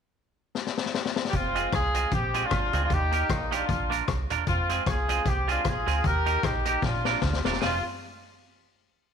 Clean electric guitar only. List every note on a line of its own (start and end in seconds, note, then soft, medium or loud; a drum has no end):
1.55 1.68 G#3 medium
1.55 1.68 C4 medium
1.55 1.68 F4 medium
1.55 1.68 G#4 medium
1.94 2.07 G#3 medium
1.94 2.07 C4 medium
1.94 2.08 F4 medium
1.94 2.08 G#4 medium
2.34 2.47 G#3 medium
2.34 2.47 C4 medium
2.34 2.47 F4 medium
2.34 2.47 G#4 medium
2.73 2.86 G#3 medium
2.73 2.86 C4 medium
2.73 2.86 F4 medium
2.73 2.87 G#4 medium
3.12 3.25 A#3 medium
3.12 3.25 D#4 medium
3.12 3.25 G4 medium
3.12 3.26 A#4 medium
3.51 3.64 A#3 medium
3.51 3.64 D#4 medium
3.51 3.65 G4 medium
3.51 3.65 A#4 medium
3.69 muted clean electric guitar stroke soft
3.90 4.03 A#3 medium
3.90 4.03 D4 loud
3.90 4.04 F4 medium
3.90 4.04 A#4 medium
4.30 4.43 A#3 medium
4.30 4.43 D4 medium
4.30 4.43 F4 medium
4.30 4.44 A#4 medium
4.69 4.82 G#3 medium
4.69 4.82 C4 medium
4.69 4.82 F4 medium
4.69 4.83 G#4 medium
5.09 5.21 G#3 medium
5.09 5.22 C4 medium
5.09 5.22 F4 medium
5.09 5.22 G#4 medium
5.48 5.60 G#3 medium
5.48 5.61 C4 medium
5.48 5.61 F4 loud
5.48 5.61 G#4 medium
5.86 5.99 G#3 medium
5.86 6.00 C4 medium
5.86 6.00 F4 medium
5.86 6.00 G#4 medium
6.26 6.39 A#3 medium
6.26 6.39 D#4 medium
6.26 6.39 G4 medium
6.26 6.39 A#4 loud
6.65 6.78 A#3 medium
6.65 6.78 D#4 medium
6.65 6.79 G4 medium
6.65 6.79 A#4 medium
7.05 7.18 A#3 medium
7.05 7.18 D4 medium
7.05 7.18 F4 medium
7.05 7.18 A#4 medium
7.45 7.57 A#3 medium
7.45 7.58 D4 medium
7.45 7.58 F4 medium
7.45 7.58 A#4 medium
7.60 7.74 G#3 medium
7.60 7.74 C4 medium
7.60 7.75 F4 medium
7.60 7.75 G#4 medium